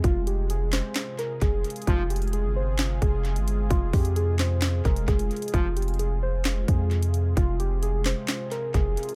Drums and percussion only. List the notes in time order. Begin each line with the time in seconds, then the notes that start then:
0.04 kick, closed hi-hat
0.27 closed hi-hat
0.50 closed hi-hat
0.73 snare, clap
0.96 snare, clap, closed hi-hat
1.19 closed hi-hat
1.41 kick, closed hi-hat
1.64 closed hi-hat
1.70 closed hi-hat
1.76 closed hi-hat
1.82 closed hi-hat
1.87 kick, closed hi-hat
2.10 closed hi-hat
2.16 closed hi-hat
2.22 closed hi-hat
2.27 closed hi-hat
2.33 closed hi-hat
2.79 snare, clap, closed hi-hat
3.02 kick, closed hi-hat
3.25 closed hi-hat
3.36 closed hi-hat
3.48 closed hi-hat
3.71 kick, closed hi-hat
3.93 kick, closed hi-hat, open hi-hat
4.05 closed hi-hat
4.16 closed hi-hat
4.39 snare, clap
4.62 snare, clap, closed hi-hat
4.85 kick, closed hi-hat
4.96 closed hi-hat
5.08 kick, closed hi-hat
5.19 closed hi-hat
5.31 closed hi-hat
5.36 closed hi-hat
5.42 closed hi-hat
5.48 closed hi-hat
5.54 kick, closed hi-hat
5.77 closed hi-hat
5.82 closed hi-hat
5.88 closed hi-hat
5.94 closed hi-hat
5.99 closed hi-hat
6.45 snare, clap, closed hi-hat
6.68 kick, closed hi-hat
6.91 closed hi-hat
7.03 closed hi-hat
7.14 closed hi-hat
7.37 kick, closed hi-hat
7.60 closed hi-hat
7.83 closed hi-hat
8.06 snare, clap
8.28 snare, clap, closed hi-hat
8.52 closed hi-hat
8.74 kick, closed hi-hat
8.97 closed hi-hat
9.03 closed hi-hat
9.09 closed hi-hat